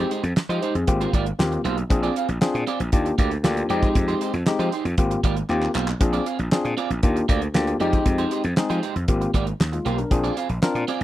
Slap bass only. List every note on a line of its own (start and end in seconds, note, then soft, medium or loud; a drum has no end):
0.23 0.32 F2 loud
0.36 muted slap bass stroke soft
0.49 0.58 F3 medium
0.75 0.84 F2 medium
0.88 1.05 G#1 loud
1.13 1.31 G#1 medium
1.39 1.57 D#2 medium
1.65 1.82 B1 medium
1.90 2.08 A#1 loud
2.29 2.38 A#1 medium
2.54 2.63 A#2 medium
2.80 2.89 A#1 medium
2.93 3.10 D#2 medium
3.19 3.36 D2 medium
3.44 3.62 D2 medium
3.70 3.87 F2 medium
3.95 4.13 F2 loud
4.34 4.43 F2 loud
4.47 muted slap bass stroke soft
4.59 4.68 F3 medium
4.85 4.94 F2 medium
4.98 5.16 G#1 loud
5.24 5.41 G#1 medium
5.49 5.67 D#2 medium
5.75 5.93 B1 medium
6.01 6.18 A#1 loud
6.39 6.48 A#1 loud
6.65 6.74 A#2 medium
6.90 6.99 A#1 medium
7.03 7.21 D#2 medium
7.29 7.47 D2 medium
7.54 7.72 D2 medium
7.80 7.98 F2 medium
8.06 8.24 F2 loud
8.44 8.53 F2 medium
8.57 muted slap bass stroke soft
8.70 8.79 F3 medium
8.96 9.04 F2 medium
9.08 9.26 G#1 loud
9.34 9.52 G#1 medium
9.60 9.78 D#2 medium
9.85 10.03 B1 medium
10.11 10.29 A#1 loud
10.49 10.58 A#1 medium
10.75 10.84 A#2 medium